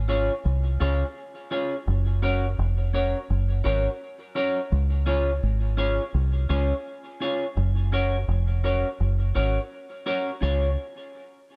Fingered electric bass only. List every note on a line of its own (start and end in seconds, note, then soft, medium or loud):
0.00 0.29 G#1 medium
0.45 0.78 C2 medium
0.81 1.02 C#2 medium
1.88 2.54 F#1 loud
2.59 3.13 F1 medium
3.30 3.63 F#1 medium
3.66 3.87 G#1 medium
4.72 5.39 C#2 loud
5.43 5.98 G#1 medium
6.14 6.48 C2 medium
6.50 6.71 C#2 loud
7.57 8.24 F#1 loud
8.28 8.83 F1 medium
9.00 9.33 F#1 medium
9.36 9.57 G#1 medium
10.43 10.75 C#2 loud